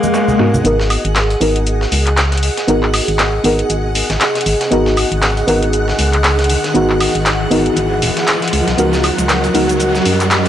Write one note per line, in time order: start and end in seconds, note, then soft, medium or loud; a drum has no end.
0.00 0.56 A#3 medium
0.00 0.36 G#4 medium
0.00 10.48 G#4 medium
0.00 0.61 D#5 medium
0.00 10.48 D#5 medium
0.00 0.61 F#5 medium
0.00 0.64 F#5 medium
0.00 0.64 F#6 medium
0.00 swell medium
0.00 high conga medium
0.00 shaker medium
0.14 snare loud
0.14 shaker medium
0.14 shaker soft
0.28 snare soft
0.28 low conga medium
0.28 shaker soft
0.39 0.60 G#2 medium
0.39 0.60 B3 medium
0.39 0.61 D#4 medium
0.39 0.61 F#4 medium
0.39 0.64 G#4 medium
0.39 0.61 A#4 medium
0.39 snare medium
0.39 shaker medium
0.54 closed hi-hat soft
0.54 low conga medium
0.54 shaker medium
0.64 0.97 G#1 medium
0.64 1.38 B3 medium
0.64 1.38 D#4 medium
0.64 1.39 F#4 medium
0.64 8.49 G#4 medium
0.64 1.39 A#4 medium
0.64 8.49 D#5 medium
0.64 10.48 F#5 medium
0.64 10.48 F#6 medium
0.64 closed hi-hat medium
0.64 riser medium
0.64 shaker medium
0.80 snare soft
0.90 open hi-hat loud
0.90 high woodblock medium
0.90 shaker medium
1.05 1.35 G#1 medium
1.05 closed hi-hat soft
1.16 snare loud
1.16 clap loud
1.16 closed hi-hat medium
1.16 shaker medium
1.30 closed hi-hat soft
1.40 1.86 G#1 medium
1.40 2.65 B3 medium
1.40 2.65 D#4 medium
1.40 2.66 F#4 medium
1.40 2.66 A#4 medium
1.40 open hi-hat medium
1.40 shaker medium
1.56 closed hi-hat medium
1.66 closed hi-hat medium
1.66 shaker medium
1.81 snare soft
1.92 2.50 C#2 medium
1.92 open hi-hat loud
1.92 shaker medium
2.07 clap soft
2.07 closed hi-hat medium
2.17 snare loud
2.17 clap loud
2.17 closed hi-hat medium
2.17 shaker medium
2.32 snare soft
2.32 closed hi-hat soft
2.37 closed hi-hat medium
2.43 open hi-hat medium
2.43 shaker medium
2.57 snare soft
2.57 closed hi-hat medium
2.67 3.01 G#1 medium
2.67 3.41 B3 medium
2.67 3.42 D#4 medium
2.67 3.42 F#4 medium
2.67 3.42 A#4 medium
2.67 closed hi-hat medium
2.67 shaker medium
2.83 clap soft
2.94 open hi-hat medium
2.94 open hi-hat loud
2.94 high woodblock medium
3.08 3.39 G#1 medium
3.08 closed hi-hat soft
3.19 snare loud
3.19 clap loud
3.19 closed hi-hat medium
3.19 shaker medium
3.43 3.63 G#1 loud
3.43 4.69 B3 medium
3.43 4.69 D#4 medium
3.43 4.69 F#4 medium
3.43 4.70 A#4 medium
3.43 open hi-hat medium
3.43 shaker medium
3.59 closed hi-hat medium
3.70 4.02 G#1 medium
3.70 closed hi-hat medium
3.70 shaker medium
3.95 open hi-hat loud
3.95 shaker medium
4.10 4.17 G#1 medium
4.10 snare medium
4.10 closed hi-hat medium
4.21 snare loud
4.21 clap loud
4.21 closed hi-hat medium
4.21 shaker medium
4.35 snare soft
4.35 closed hi-hat soft
4.41 closed hi-hat medium
4.46 4.55 G#1 loud
4.46 open hi-hat medium
4.46 shaker medium
4.61 snare soft
4.61 closed hi-hat medium
4.71 5.04 G#1 loud
4.71 5.45 B3 medium
4.71 5.45 D#4 medium
4.71 5.46 F#4 medium
4.71 5.46 A#4 medium
4.71 closed hi-hat medium
4.71 shaker medium
4.86 snare soft
4.97 open hi-hat loud
4.97 high woodblock medium
4.97 shaker medium
5.12 5.42 G#1 medium
5.12 closed hi-hat soft
5.22 snare loud
5.22 clap loud
5.22 closed hi-hat medium
5.22 shaker medium
5.37 closed hi-hat soft
5.47 5.93 G#1 loud
5.47 6.72 B3 medium
5.47 6.72 D#4 medium
5.47 6.73 F#4 medium
5.47 6.73 A#4 medium
5.47 open hi-hat medium
5.47 shaker medium
5.63 closed hi-hat soft
5.73 closed hi-hat medium
5.73 shaker medium
5.88 snare soft
5.99 6.56 C#2 medium
5.99 open hi-hat loud
5.99 shaker medium
6.13 clap soft
6.13 closed hi-hat soft
6.24 snare loud
6.24 clap loud
6.24 closed hi-hat medium
6.24 shaker medium
6.39 snare soft
6.39 closed hi-hat soft
6.44 closed hi-hat medium
6.50 open hi-hat medium
6.50 shaker medium
6.64 snare soft
6.64 closed hi-hat soft
6.74 7.07 G#1 loud
6.74 7.48 B3 medium
6.74 7.49 D#4 medium
6.74 7.49 F#4 medium
6.74 7.49 A#4 medium
6.74 closed hi-hat medium
6.74 shaker medium
6.90 clap soft
7.00 open hi-hat medium
7.00 open hi-hat loud
7.00 high woodblock medium
7.15 7.46 G#1 medium
7.15 closed hi-hat soft
7.26 snare loud
7.26 clap loud
7.26 closed hi-hat medium
7.26 shaker medium
7.50 7.69 G#1 loud
7.50 8.51 B3 medium
7.50 8.52 D#4 medium
7.50 8.52 F#4 medium
7.50 8.52 A#4 medium
7.50 open hi-hat medium
7.50 shaker medium
7.66 closed hi-hat soft
7.77 8.01 G#1 medium
7.77 closed hi-hat medium
7.77 shaker medium
8.02 8.11 D#1 medium
8.02 open hi-hat loud
8.02 shaker medium
8.17 snare medium
8.17 closed hi-hat soft
8.28 snare loud
8.28 clap loud
8.28 closed hi-hat medium
8.28 shaker medium
8.42 snare soft
8.42 closed hi-hat soft
8.48 closed hi-hat medium
8.53 8.61 C#2 loud
8.53 10.48 C#4 medium
8.53 10.48 A#4 medium
8.53 10.48 D#5 medium
8.53 open hi-hat medium
8.53 shaker medium
8.68 8.75 B1 loud
8.68 snare soft
8.68 closed hi-hat soft
8.77 9.11 C#2 medium
8.77 9.52 B3 medium
8.77 9.52 D#4 medium
8.77 9.52 F#4 medium
8.77 9.53 A#4 medium
8.77 closed hi-hat medium
8.77 shaker medium
8.93 snare soft
8.93 shaker soft
9.04 open hi-hat loud
9.04 high woodblock medium
9.04 shaker medium
9.18 9.49 C#2 medium
9.18 closed hi-hat soft
9.18 shaker medium
9.29 snare loud
9.29 clap loud
9.29 closed hi-hat medium
9.29 shaker medium
9.44 closed hi-hat soft
9.44 shaker soft
9.54 10.00 C#2 loud
9.54 10.48 B3 medium
9.54 10.48 D#4 medium
9.54 10.48 F#4 medium
9.54 10.48 A#4 medium
9.54 open hi-hat medium
9.54 shaker medium
9.69 closed hi-hat soft
9.69 shaker medium
9.80 closed hi-hat medium
9.80 shaker medium
9.95 snare soft
9.95 shaker soft
10.06 10.48 F#2 medium
10.06 open hi-hat loud
10.06 shaker medium
10.20 clap soft
10.20 closed hi-hat soft
10.20 shaker medium
10.31 snare loud
10.31 clap loud
10.31 closed hi-hat medium
10.31 shaker medium